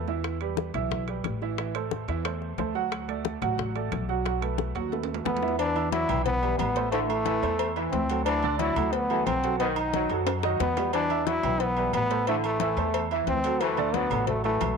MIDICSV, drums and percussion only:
0, 0, Header, 1, 2, 480
1, 0, Start_track
1, 0, Key_signature, 1, "minor"
1, 0, Tempo, 334076
1, 352, Time_signature, 4, 2, 24, 8
1, 21224, End_track
2, 0, Start_track
2, 0, Title_t, "Drums"
2, 109, Note_on_c, 9, 63, 36
2, 109, Note_on_c, 9, 66, 65
2, 113, Note_on_c, 9, 60, 33
2, 253, Note_off_c, 9, 63, 0
2, 253, Note_off_c, 9, 66, 0
2, 257, Note_off_c, 9, 60, 0
2, 348, Note_on_c, 9, 65, 91
2, 350, Note_on_c, 9, 60, 64
2, 353, Note_on_c, 9, 63, 33
2, 492, Note_off_c, 9, 65, 0
2, 494, Note_off_c, 9, 60, 0
2, 497, Note_off_c, 9, 63, 0
2, 585, Note_on_c, 9, 65, 65
2, 590, Note_on_c, 9, 63, 32
2, 729, Note_off_c, 9, 65, 0
2, 734, Note_off_c, 9, 63, 0
2, 821, Note_on_c, 9, 63, 94
2, 837, Note_on_c, 9, 60, 66
2, 965, Note_off_c, 9, 63, 0
2, 981, Note_off_c, 9, 60, 0
2, 1065, Note_on_c, 9, 63, 34
2, 1065, Note_on_c, 9, 64, 82
2, 1068, Note_on_c, 9, 65, 85
2, 1078, Note_on_c, 9, 60, 33
2, 1208, Note_off_c, 9, 63, 0
2, 1208, Note_off_c, 9, 64, 0
2, 1212, Note_off_c, 9, 65, 0
2, 1222, Note_off_c, 9, 60, 0
2, 1308, Note_on_c, 9, 63, 36
2, 1308, Note_on_c, 9, 64, 73
2, 1317, Note_on_c, 9, 60, 73
2, 1452, Note_off_c, 9, 63, 0
2, 1452, Note_off_c, 9, 64, 0
2, 1460, Note_off_c, 9, 60, 0
2, 1544, Note_on_c, 9, 63, 35
2, 1548, Note_on_c, 9, 65, 67
2, 1558, Note_on_c, 9, 60, 35
2, 1688, Note_off_c, 9, 63, 0
2, 1692, Note_off_c, 9, 65, 0
2, 1701, Note_off_c, 9, 60, 0
2, 1783, Note_on_c, 9, 63, 84
2, 1787, Note_on_c, 9, 65, 92
2, 1797, Note_on_c, 9, 60, 35
2, 1797, Note_on_c, 9, 61, 77
2, 1927, Note_off_c, 9, 63, 0
2, 1930, Note_off_c, 9, 65, 0
2, 1941, Note_off_c, 9, 60, 0
2, 1941, Note_off_c, 9, 61, 0
2, 2031, Note_on_c, 9, 63, 34
2, 2037, Note_on_c, 9, 60, 33
2, 2175, Note_off_c, 9, 63, 0
2, 2181, Note_off_c, 9, 60, 0
2, 2272, Note_on_c, 9, 63, 31
2, 2274, Note_on_c, 9, 60, 66
2, 2276, Note_on_c, 9, 65, 64
2, 2416, Note_off_c, 9, 63, 0
2, 2418, Note_off_c, 9, 60, 0
2, 2420, Note_off_c, 9, 65, 0
2, 2512, Note_on_c, 9, 63, 34
2, 2512, Note_on_c, 9, 65, 92
2, 2655, Note_off_c, 9, 63, 0
2, 2656, Note_off_c, 9, 65, 0
2, 2748, Note_on_c, 9, 63, 94
2, 2752, Note_on_c, 9, 60, 59
2, 2892, Note_off_c, 9, 63, 0
2, 2896, Note_off_c, 9, 60, 0
2, 2988, Note_on_c, 9, 63, 35
2, 2994, Note_on_c, 9, 60, 34
2, 2996, Note_on_c, 9, 65, 66
2, 3131, Note_off_c, 9, 63, 0
2, 3138, Note_off_c, 9, 60, 0
2, 3140, Note_off_c, 9, 65, 0
2, 3227, Note_on_c, 9, 63, 36
2, 3232, Note_on_c, 9, 65, 101
2, 3235, Note_on_c, 9, 60, 71
2, 3370, Note_off_c, 9, 63, 0
2, 3376, Note_off_c, 9, 65, 0
2, 3378, Note_off_c, 9, 60, 0
2, 3472, Note_on_c, 9, 63, 34
2, 3473, Note_on_c, 9, 60, 32
2, 3616, Note_off_c, 9, 63, 0
2, 3617, Note_off_c, 9, 60, 0
2, 3708, Note_on_c, 9, 63, 88
2, 3714, Note_on_c, 9, 65, 65
2, 3718, Note_on_c, 9, 60, 35
2, 3718, Note_on_c, 9, 61, 85
2, 3851, Note_off_c, 9, 63, 0
2, 3857, Note_off_c, 9, 65, 0
2, 3862, Note_off_c, 9, 60, 0
2, 3862, Note_off_c, 9, 61, 0
2, 3950, Note_on_c, 9, 63, 38
2, 3954, Note_on_c, 9, 60, 34
2, 4094, Note_off_c, 9, 63, 0
2, 4097, Note_off_c, 9, 60, 0
2, 4194, Note_on_c, 9, 60, 68
2, 4195, Note_on_c, 9, 63, 34
2, 4198, Note_on_c, 9, 65, 96
2, 4338, Note_off_c, 9, 60, 0
2, 4339, Note_off_c, 9, 63, 0
2, 4342, Note_off_c, 9, 65, 0
2, 4426, Note_on_c, 9, 63, 33
2, 4438, Note_on_c, 9, 65, 66
2, 4570, Note_off_c, 9, 63, 0
2, 4582, Note_off_c, 9, 65, 0
2, 4666, Note_on_c, 9, 63, 95
2, 4674, Note_on_c, 9, 60, 66
2, 4809, Note_off_c, 9, 63, 0
2, 4817, Note_off_c, 9, 60, 0
2, 4910, Note_on_c, 9, 63, 35
2, 4910, Note_on_c, 9, 64, 86
2, 4911, Note_on_c, 9, 60, 34
2, 4917, Note_on_c, 9, 65, 94
2, 5054, Note_off_c, 9, 63, 0
2, 5054, Note_off_c, 9, 64, 0
2, 5055, Note_off_c, 9, 60, 0
2, 5061, Note_off_c, 9, 65, 0
2, 5146, Note_on_c, 9, 63, 34
2, 5146, Note_on_c, 9, 64, 72
2, 5159, Note_on_c, 9, 60, 75
2, 5290, Note_off_c, 9, 63, 0
2, 5290, Note_off_c, 9, 64, 0
2, 5303, Note_off_c, 9, 60, 0
2, 5390, Note_on_c, 9, 63, 32
2, 5396, Note_on_c, 9, 60, 35
2, 5396, Note_on_c, 9, 65, 67
2, 5534, Note_off_c, 9, 63, 0
2, 5540, Note_off_c, 9, 60, 0
2, 5540, Note_off_c, 9, 65, 0
2, 5628, Note_on_c, 9, 63, 82
2, 5632, Note_on_c, 9, 65, 89
2, 5639, Note_on_c, 9, 60, 32
2, 5639, Note_on_c, 9, 61, 82
2, 5772, Note_off_c, 9, 63, 0
2, 5776, Note_off_c, 9, 65, 0
2, 5783, Note_off_c, 9, 60, 0
2, 5783, Note_off_c, 9, 61, 0
2, 5876, Note_on_c, 9, 60, 34
2, 5878, Note_on_c, 9, 63, 36
2, 6020, Note_off_c, 9, 60, 0
2, 6021, Note_off_c, 9, 63, 0
2, 6114, Note_on_c, 9, 63, 31
2, 6114, Note_on_c, 9, 65, 65
2, 6120, Note_on_c, 9, 60, 68
2, 6257, Note_off_c, 9, 63, 0
2, 6258, Note_off_c, 9, 65, 0
2, 6264, Note_off_c, 9, 60, 0
2, 6352, Note_on_c, 9, 63, 33
2, 6356, Note_on_c, 9, 65, 94
2, 6495, Note_off_c, 9, 63, 0
2, 6500, Note_off_c, 9, 65, 0
2, 6583, Note_on_c, 9, 63, 92
2, 6596, Note_on_c, 9, 60, 58
2, 6727, Note_off_c, 9, 63, 0
2, 6740, Note_off_c, 9, 60, 0
2, 6826, Note_on_c, 9, 63, 32
2, 6834, Note_on_c, 9, 65, 66
2, 6841, Note_on_c, 9, 60, 33
2, 6970, Note_off_c, 9, 63, 0
2, 6977, Note_off_c, 9, 65, 0
2, 6984, Note_off_c, 9, 60, 0
2, 7069, Note_on_c, 9, 63, 37
2, 7072, Note_on_c, 9, 65, 71
2, 7083, Note_on_c, 9, 60, 74
2, 7213, Note_off_c, 9, 63, 0
2, 7215, Note_off_c, 9, 65, 0
2, 7226, Note_off_c, 9, 60, 0
2, 7233, Note_on_c, 9, 65, 91
2, 7303, Note_on_c, 9, 63, 35
2, 7377, Note_off_c, 9, 65, 0
2, 7391, Note_on_c, 9, 66, 80
2, 7447, Note_off_c, 9, 63, 0
2, 7535, Note_off_c, 9, 66, 0
2, 7548, Note_on_c, 9, 63, 84
2, 7550, Note_on_c, 9, 66, 99
2, 7556, Note_on_c, 9, 61, 98
2, 7692, Note_off_c, 9, 63, 0
2, 7694, Note_off_c, 9, 66, 0
2, 7700, Note_off_c, 9, 61, 0
2, 7709, Note_on_c, 9, 66, 87
2, 7789, Note_on_c, 9, 63, 35
2, 7795, Note_on_c, 9, 61, 88
2, 7853, Note_off_c, 9, 66, 0
2, 7871, Note_on_c, 9, 66, 77
2, 7932, Note_off_c, 9, 63, 0
2, 7939, Note_off_c, 9, 61, 0
2, 8014, Note_off_c, 9, 66, 0
2, 8030, Note_on_c, 9, 63, 34
2, 8030, Note_on_c, 9, 68, 108
2, 8034, Note_on_c, 9, 56, 107
2, 8173, Note_off_c, 9, 63, 0
2, 8174, Note_off_c, 9, 68, 0
2, 8178, Note_off_c, 9, 56, 0
2, 8272, Note_on_c, 9, 68, 88
2, 8273, Note_on_c, 9, 63, 36
2, 8416, Note_off_c, 9, 68, 0
2, 8417, Note_off_c, 9, 63, 0
2, 8512, Note_on_c, 9, 63, 100
2, 8514, Note_on_c, 9, 56, 74
2, 8655, Note_off_c, 9, 63, 0
2, 8658, Note_off_c, 9, 56, 0
2, 8749, Note_on_c, 9, 68, 111
2, 8753, Note_on_c, 9, 63, 37
2, 8753, Note_on_c, 9, 64, 89
2, 8893, Note_off_c, 9, 68, 0
2, 8897, Note_off_c, 9, 63, 0
2, 8897, Note_off_c, 9, 64, 0
2, 8989, Note_on_c, 9, 56, 117
2, 8991, Note_on_c, 9, 63, 36
2, 8991, Note_on_c, 9, 64, 81
2, 9133, Note_off_c, 9, 56, 0
2, 9135, Note_off_c, 9, 63, 0
2, 9135, Note_off_c, 9, 64, 0
2, 9229, Note_on_c, 9, 63, 39
2, 9234, Note_on_c, 9, 68, 81
2, 9373, Note_off_c, 9, 63, 0
2, 9378, Note_off_c, 9, 68, 0
2, 9467, Note_on_c, 9, 63, 90
2, 9471, Note_on_c, 9, 56, 74
2, 9477, Note_on_c, 9, 66, 74
2, 9477, Note_on_c, 9, 68, 114
2, 9611, Note_off_c, 9, 63, 0
2, 9614, Note_off_c, 9, 56, 0
2, 9621, Note_off_c, 9, 66, 0
2, 9621, Note_off_c, 9, 68, 0
2, 9709, Note_on_c, 9, 56, 72
2, 9709, Note_on_c, 9, 63, 38
2, 9853, Note_off_c, 9, 56, 0
2, 9853, Note_off_c, 9, 63, 0
2, 9947, Note_on_c, 9, 56, 114
2, 9952, Note_on_c, 9, 63, 32
2, 9959, Note_on_c, 9, 68, 88
2, 10091, Note_off_c, 9, 56, 0
2, 10096, Note_off_c, 9, 63, 0
2, 10103, Note_off_c, 9, 68, 0
2, 10190, Note_on_c, 9, 63, 37
2, 10198, Note_on_c, 9, 68, 106
2, 10334, Note_off_c, 9, 63, 0
2, 10342, Note_off_c, 9, 68, 0
2, 10425, Note_on_c, 9, 63, 95
2, 10430, Note_on_c, 9, 56, 72
2, 10569, Note_off_c, 9, 63, 0
2, 10574, Note_off_c, 9, 56, 0
2, 10668, Note_on_c, 9, 63, 36
2, 10678, Note_on_c, 9, 68, 91
2, 10811, Note_off_c, 9, 63, 0
2, 10822, Note_off_c, 9, 68, 0
2, 10907, Note_on_c, 9, 56, 111
2, 10907, Note_on_c, 9, 63, 39
2, 10908, Note_on_c, 9, 68, 110
2, 11051, Note_off_c, 9, 56, 0
2, 11051, Note_off_c, 9, 63, 0
2, 11052, Note_off_c, 9, 68, 0
2, 11151, Note_on_c, 9, 68, 76
2, 11152, Note_on_c, 9, 63, 38
2, 11295, Note_off_c, 9, 68, 0
2, 11296, Note_off_c, 9, 63, 0
2, 11387, Note_on_c, 9, 66, 75
2, 11389, Note_on_c, 9, 56, 67
2, 11393, Note_on_c, 9, 63, 91
2, 11530, Note_off_c, 9, 66, 0
2, 11533, Note_off_c, 9, 56, 0
2, 11537, Note_off_c, 9, 63, 0
2, 11630, Note_on_c, 9, 56, 69
2, 11631, Note_on_c, 9, 68, 69
2, 11634, Note_on_c, 9, 63, 40
2, 11774, Note_off_c, 9, 56, 0
2, 11775, Note_off_c, 9, 68, 0
2, 11777, Note_off_c, 9, 63, 0
2, 11867, Note_on_c, 9, 56, 111
2, 11867, Note_on_c, 9, 68, 111
2, 11876, Note_on_c, 9, 63, 37
2, 12010, Note_off_c, 9, 68, 0
2, 12011, Note_off_c, 9, 56, 0
2, 12020, Note_off_c, 9, 63, 0
2, 12105, Note_on_c, 9, 68, 85
2, 12110, Note_on_c, 9, 63, 37
2, 12249, Note_off_c, 9, 68, 0
2, 12253, Note_off_c, 9, 63, 0
2, 12346, Note_on_c, 9, 63, 99
2, 12354, Note_on_c, 9, 56, 80
2, 12490, Note_off_c, 9, 63, 0
2, 12498, Note_off_c, 9, 56, 0
2, 12592, Note_on_c, 9, 63, 38
2, 12592, Note_on_c, 9, 64, 90
2, 12592, Note_on_c, 9, 68, 106
2, 12735, Note_off_c, 9, 68, 0
2, 12736, Note_off_c, 9, 63, 0
2, 12736, Note_off_c, 9, 64, 0
2, 12827, Note_on_c, 9, 56, 119
2, 12970, Note_off_c, 9, 56, 0
2, 13067, Note_on_c, 9, 63, 39
2, 13075, Note_on_c, 9, 68, 85
2, 13211, Note_off_c, 9, 63, 0
2, 13219, Note_off_c, 9, 68, 0
2, 13313, Note_on_c, 9, 63, 89
2, 13315, Note_on_c, 9, 56, 73
2, 13315, Note_on_c, 9, 66, 70
2, 13315, Note_on_c, 9, 68, 111
2, 13456, Note_off_c, 9, 63, 0
2, 13458, Note_off_c, 9, 56, 0
2, 13458, Note_off_c, 9, 66, 0
2, 13458, Note_off_c, 9, 68, 0
2, 13550, Note_on_c, 9, 63, 36
2, 13557, Note_on_c, 9, 56, 71
2, 13694, Note_off_c, 9, 63, 0
2, 13700, Note_off_c, 9, 56, 0
2, 13790, Note_on_c, 9, 68, 79
2, 13791, Note_on_c, 9, 56, 107
2, 13795, Note_on_c, 9, 63, 35
2, 13934, Note_off_c, 9, 56, 0
2, 13934, Note_off_c, 9, 68, 0
2, 13939, Note_off_c, 9, 63, 0
2, 14025, Note_on_c, 9, 68, 111
2, 14038, Note_on_c, 9, 63, 34
2, 14169, Note_off_c, 9, 68, 0
2, 14181, Note_off_c, 9, 63, 0
2, 14274, Note_on_c, 9, 56, 73
2, 14274, Note_on_c, 9, 63, 100
2, 14418, Note_off_c, 9, 56, 0
2, 14418, Note_off_c, 9, 63, 0
2, 14507, Note_on_c, 9, 68, 86
2, 14513, Note_on_c, 9, 63, 36
2, 14651, Note_off_c, 9, 68, 0
2, 14657, Note_off_c, 9, 63, 0
2, 14750, Note_on_c, 9, 65, 103
2, 14750, Note_on_c, 9, 68, 114
2, 14751, Note_on_c, 9, 56, 110
2, 14751, Note_on_c, 9, 60, 110
2, 14757, Note_on_c, 9, 63, 39
2, 14894, Note_off_c, 9, 56, 0
2, 14894, Note_off_c, 9, 60, 0
2, 14894, Note_off_c, 9, 65, 0
2, 14894, Note_off_c, 9, 68, 0
2, 14900, Note_off_c, 9, 63, 0
2, 14988, Note_on_c, 9, 68, 79
2, 14990, Note_on_c, 9, 60, 102
2, 14994, Note_on_c, 9, 63, 38
2, 15131, Note_off_c, 9, 68, 0
2, 15134, Note_off_c, 9, 60, 0
2, 15137, Note_off_c, 9, 63, 0
2, 15229, Note_on_c, 9, 66, 93
2, 15232, Note_on_c, 9, 63, 90
2, 15234, Note_on_c, 9, 56, 76
2, 15234, Note_on_c, 9, 61, 91
2, 15372, Note_off_c, 9, 66, 0
2, 15375, Note_off_c, 9, 63, 0
2, 15378, Note_off_c, 9, 56, 0
2, 15378, Note_off_c, 9, 61, 0
2, 15473, Note_on_c, 9, 66, 96
2, 15473, Note_on_c, 9, 68, 73
2, 15475, Note_on_c, 9, 56, 65
2, 15475, Note_on_c, 9, 61, 74
2, 15616, Note_off_c, 9, 66, 0
2, 15616, Note_off_c, 9, 68, 0
2, 15619, Note_off_c, 9, 56, 0
2, 15619, Note_off_c, 9, 61, 0
2, 15707, Note_on_c, 9, 68, 106
2, 15711, Note_on_c, 9, 56, 112
2, 15717, Note_on_c, 9, 63, 34
2, 15851, Note_off_c, 9, 68, 0
2, 15855, Note_off_c, 9, 56, 0
2, 15860, Note_off_c, 9, 63, 0
2, 15949, Note_on_c, 9, 63, 36
2, 15949, Note_on_c, 9, 68, 94
2, 16092, Note_off_c, 9, 63, 0
2, 16093, Note_off_c, 9, 68, 0
2, 16189, Note_on_c, 9, 63, 97
2, 16196, Note_on_c, 9, 56, 75
2, 16332, Note_off_c, 9, 63, 0
2, 16339, Note_off_c, 9, 56, 0
2, 16427, Note_on_c, 9, 68, 99
2, 16431, Note_on_c, 9, 63, 36
2, 16431, Note_on_c, 9, 64, 81
2, 16571, Note_off_c, 9, 68, 0
2, 16575, Note_off_c, 9, 63, 0
2, 16575, Note_off_c, 9, 64, 0
2, 16667, Note_on_c, 9, 56, 113
2, 16811, Note_off_c, 9, 56, 0
2, 16901, Note_on_c, 9, 63, 36
2, 16906, Note_on_c, 9, 68, 85
2, 17045, Note_off_c, 9, 63, 0
2, 17049, Note_off_c, 9, 68, 0
2, 17143, Note_on_c, 9, 63, 90
2, 17147, Note_on_c, 9, 68, 111
2, 17152, Note_on_c, 9, 56, 75
2, 17287, Note_off_c, 9, 63, 0
2, 17291, Note_off_c, 9, 68, 0
2, 17296, Note_off_c, 9, 56, 0
2, 17383, Note_on_c, 9, 63, 39
2, 17393, Note_on_c, 9, 56, 72
2, 17527, Note_off_c, 9, 63, 0
2, 17537, Note_off_c, 9, 56, 0
2, 17628, Note_on_c, 9, 63, 36
2, 17631, Note_on_c, 9, 68, 86
2, 17632, Note_on_c, 9, 56, 106
2, 17772, Note_off_c, 9, 63, 0
2, 17775, Note_off_c, 9, 68, 0
2, 17776, Note_off_c, 9, 56, 0
2, 17869, Note_on_c, 9, 63, 37
2, 17871, Note_on_c, 9, 68, 109
2, 18013, Note_off_c, 9, 63, 0
2, 18014, Note_off_c, 9, 68, 0
2, 18103, Note_on_c, 9, 63, 102
2, 18115, Note_on_c, 9, 56, 72
2, 18246, Note_off_c, 9, 63, 0
2, 18258, Note_off_c, 9, 56, 0
2, 18346, Note_on_c, 9, 63, 37
2, 18351, Note_on_c, 9, 68, 90
2, 18490, Note_off_c, 9, 63, 0
2, 18495, Note_off_c, 9, 68, 0
2, 18587, Note_on_c, 9, 63, 36
2, 18591, Note_on_c, 9, 68, 116
2, 18593, Note_on_c, 9, 56, 121
2, 18731, Note_off_c, 9, 63, 0
2, 18735, Note_off_c, 9, 68, 0
2, 18737, Note_off_c, 9, 56, 0
2, 18833, Note_on_c, 9, 63, 34
2, 18837, Note_on_c, 9, 68, 81
2, 18977, Note_off_c, 9, 63, 0
2, 18981, Note_off_c, 9, 68, 0
2, 19065, Note_on_c, 9, 63, 89
2, 19066, Note_on_c, 9, 56, 74
2, 19076, Note_on_c, 9, 66, 73
2, 19209, Note_off_c, 9, 63, 0
2, 19210, Note_off_c, 9, 56, 0
2, 19219, Note_off_c, 9, 66, 0
2, 19308, Note_on_c, 9, 56, 66
2, 19312, Note_on_c, 9, 63, 37
2, 19317, Note_on_c, 9, 68, 69
2, 19452, Note_off_c, 9, 56, 0
2, 19455, Note_off_c, 9, 63, 0
2, 19460, Note_off_c, 9, 68, 0
2, 19549, Note_on_c, 9, 56, 99
2, 19551, Note_on_c, 9, 68, 99
2, 19553, Note_on_c, 9, 63, 35
2, 19692, Note_off_c, 9, 56, 0
2, 19694, Note_off_c, 9, 68, 0
2, 19696, Note_off_c, 9, 63, 0
2, 19788, Note_on_c, 9, 63, 38
2, 19788, Note_on_c, 9, 68, 86
2, 19931, Note_off_c, 9, 63, 0
2, 19932, Note_off_c, 9, 68, 0
2, 20029, Note_on_c, 9, 56, 78
2, 20029, Note_on_c, 9, 63, 94
2, 20172, Note_off_c, 9, 63, 0
2, 20173, Note_off_c, 9, 56, 0
2, 20271, Note_on_c, 9, 63, 36
2, 20271, Note_on_c, 9, 64, 84
2, 20271, Note_on_c, 9, 68, 109
2, 20415, Note_off_c, 9, 63, 0
2, 20415, Note_off_c, 9, 64, 0
2, 20415, Note_off_c, 9, 68, 0
2, 20506, Note_on_c, 9, 56, 115
2, 20507, Note_on_c, 9, 63, 37
2, 20507, Note_on_c, 9, 64, 81
2, 20650, Note_off_c, 9, 56, 0
2, 20651, Note_off_c, 9, 63, 0
2, 20651, Note_off_c, 9, 64, 0
2, 20749, Note_on_c, 9, 68, 79
2, 20754, Note_on_c, 9, 63, 38
2, 20893, Note_off_c, 9, 68, 0
2, 20898, Note_off_c, 9, 63, 0
2, 20986, Note_on_c, 9, 56, 73
2, 20993, Note_on_c, 9, 63, 93
2, 20993, Note_on_c, 9, 66, 77
2, 20993, Note_on_c, 9, 68, 110
2, 21130, Note_off_c, 9, 56, 0
2, 21137, Note_off_c, 9, 63, 0
2, 21137, Note_off_c, 9, 66, 0
2, 21137, Note_off_c, 9, 68, 0
2, 21224, End_track
0, 0, End_of_file